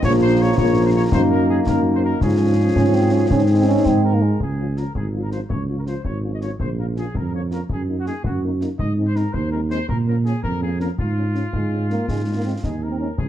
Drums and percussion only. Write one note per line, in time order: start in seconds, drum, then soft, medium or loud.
0.03 concert bass drum medium
0.03 snare medium
0.03 crash soft
0.58 concert bass drum medium
0.58 snare medium
1.12 concert bass drum medium
1.12 snare medium
1.66 concert bass drum medium
1.66 snare medium
2.21 concert bass drum medium
2.21 snare medium
2.76 concert bass drum medium
2.76 snare medium
3.30 concert bass drum medium
3.30 snare medium
3.85 concert bass drum medium
3.85 snare medium
4.40 concert bass drum medium
4.77 snare soft
4.95 concert bass drum medium
5.32 snare soft
5.50 concert bass drum medium
5.87 snare soft
6.05 concert bass drum medium
6.41 snare soft
6.60 concert bass drum medium
6.96 snare soft
7.15 concert bass drum medium
7.51 snare soft
7.69 concert bass drum medium
8.06 snare soft
8.24 concert bass drum medium
8.61 snare soft
8.79 concert bass drum medium
9.16 snare soft
9.34 concert bass drum medium
9.70 snare soft
9.89 concert bass drum medium
10.26 snare soft
10.44 concert bass drum medium
10.80 snare soft
10.98 concert bass drum medium
11.35 snare soft
11.53 concert bass drum medium
11.90 snare soft
12.08 concert bass drum medium
12.08 snare soft
12.63 concert bass drum medium
12.63 snare soft
13.18 concert bass drum medium